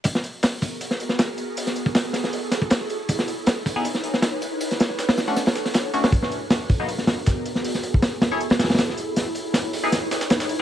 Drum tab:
HH |o---o---o---o---o---o---o---o---|o-x-o---o---o---o---o---o---o---|o---o---o---o---o---o---o---o---|o-x-o---o-o-o---o-o---o-o---o-o-|
TB |x---x---x-------x---x---x---x---|x---x---x---x---x---x---x---x---|x---x---x-------x---x---x---x---|x---x---x---x---x---x---x---x---|
SD |--o-----o---------o---o-o-------|--o-----o---o-o-----o---o-o-----|--o-----o---------o---o-o-------|--o-o-o-o-o-o---o-o-o-o-o-----o-|
BD |o-----------o-------------------|------o---------------o---------|o-----------o-------------------|--------------------------------|

HH |o---o---o---o---o---o---o---o---|o-x-o---o---o---o-o-ooooo---o---|o---o---o---o---o---o---o-o-o-o-|
TB |x---x---x-------x---x---x---x---|x---x---x---x---x---x---x---x---|x---x---x-------x---x-x-x-x-x---|
SD |--o-----o---------o-o---o-----o-|--o-----o---o-----o-ooooo-o-----|o-------o-------o---o-o-o-o-----|
BD |o-----------o-----------o-------|------o-------------------------|--------------------------------|